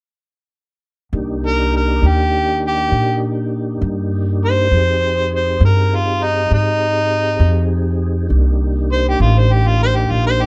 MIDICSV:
0, 0, Header, 1, 4, 480
1, 0, Start_track
1, 0, Key_signature, -3, "minor"
1, 0, Tempo, 598027
1, 899, Time_signature, 12, 3, 24, 8
1, 8396, End_track
2, 0, Start_track
2, 0, Title_t, "Harmonica"
2, 0, Program_c, 0, 22
2, 1176, Note_on_c, 0, 70, 89
2, 1391, Note_off_c, 0, 70, 0
2, 1417, Note_on_c, 0, 70, 71
2, 1662, Note_on_c, 0, 67, 83
2, 1674, Note_off_c, 0, 70, 0
2, 2107, Note_off_c, 0, 67, 0
2, 2148, Note_on_c, 0, 67, 96
2, 2590, Note_off_c, 0, 67, 0
2, 3576, Note_on_c, 0, 72, 103
2, 4257, Note_off_c, 0, 72, 0
2, 4301, Note_on_c, 0, 72, 77
2, 4513, Note_off_c, 0, 72, 0
2, 4536, Note_on_c, 0, 70, 80
2, 4777, Note_on_c, 0, 65, 78
2, 4789, Note_off_c, 0, 70, 0
2, 5009, Note_on_c, 0, 63, 91
2, 5021, Note_off_c, 0, 65, 0
2, 5227, Note_off_c, 0, 63, 0
2, 5246, Note_on_c, 0, 63, 100
2, 6164, Note_off_c, 0, 63, 0
2, 7162, Note_on_c, 0, 72, 83
2, 7263, Note_off_c, 0, 72, 0
2, 7296, Note_on_c, 0, 67, 85
2, 7391, Note_off_c, 0, 67, 0
2, 7397, Note_on_c, 0, 65, 75
2, 7530, Note_on_c, 0, 72, 75
2, 7542, Note_off_c, 0, 65, 0
2, 7648, Note_on_c, 0, 67, 79
2, 7660, Note_off_c, 0, 72, 0
2, 7765, Note_on_c, 0, 65, 87
2, 7777, Note_off_c, 0, 67, 0
2, 7865, Note_off_c, 0, 65, 0
2, 7889, Note_on_c, 0, 72, 108
2, 7994, Note_on_c, 0, 67, 83
2, 8006, Note_off_c, 0, 72, 0
2, 8116, Note_on_c, 0, 65, 93
2, 8128, Note_off_c, 0, 67, 0
2, 8220, Note_off_c, 0, 65, 0
2, 8241, Note_on_c, 0, 72, 103
2, 8369, Note_on_c, 0, 67, 88
2, 8381, Note_off_c, 0, 72, 0
2, 8396, Note_off_c, 0, 67, 0
2, 8396, End_track
3, 0, Start_track
3, 0, Title_t, "Tonewheel organ"
3, 0, Program_c, 1, 16
3, 909, Note_on_c, 1, 63, 54
3, 912, Note_on_c, 1, 62, 60
3, 914, Note_on_c, 1, 67, 56
3, 917, Note_on_c, 1, 58, 64
3, 3755, Note_off_c, 1, 63, 0
3, 3757, Note_off_c, 1, 62, 0
3, 3757, Note_off_c, 1, 67, 0
3, 3759, Note_off_c, 1, 58, 0
3, 3791, Note_on_c, 1, 60, 60
3, 3797, Note_on_c, 1, 67, 56
3, 3799, Note_on_c, 1, 63, 60
3, 3799, Note_on_c, 1, 68, 58
3, 6636, Note_off_c, 1, 60, 0
3, 6639, Note_off_c, 1, 67, 0
3, 6640, Note_off_c, 1, 63, 0
3, 6640, Note_off_c, 1, 68, 0
3, 6651, Note_on_c, 1, 63, 65
3, 6651, Note_on_c, 1, 67, 61
3, 6653, Note_on_c, 1, 62, 59
3, 6654, Note_on_c, 1, 58, 58
3, 8396, Note_off_c, 1, 58, 0
3, 8396, Note_off_c, 1, 62, 0
3, 8396, Note_off_c, 1, 63, 0
3, 8396, Note_off_c, 1, 67, 0
3, 8396, End_track
4, 0, Start_track
4, 0, Title_t, "Upright bass"
4, 0, Program_c, 2, 32
4, 904, Note_on_c, 2, 36, 77
4, 1600, Note_off_c, 2, 36, 0
4, 1624, Note_on_c, 2, 39, 74
4, 2320, Note_off_c, 2, 39, 0
4, 2341, Note_on_c, 2, 46, 69
4, 3038, Note_off_c, 2, 46, 0
4, 3063, Note_on_c, 2, 43, 82
4, 3759, Note_off_c, 2, 43, 0
4, 3782, Note_on_c, 2, 41, 75
4, 4479, Note_off_c, 2, 41, 0
4, 4499, Note_on_c, 2, 43, 83
4, 5197, Note_off_c, 2, 43, 0
4, 5224, Note_on_c, 2, 44, 63
4, 5920, Note_off_c, 2, 44, 0
4, 5936, Note_on_c, 2, 41, 89
4, 6636, Note_off_c, 2, 41, 0
4, 6662, Note_on_c, 2, 36, 79
4, 7359, Note_off_c, 2, 36, 0
4, 7383, Note_on_c, 2, 33, 90
4, 8080, Note_off_c, 2, 33, 0
4, 8111, Note_on_c, 2, 34, 67
4, 8396, Note_off_c, 2, 34, 0
4, 8396, End_track
0, 0, End_of_file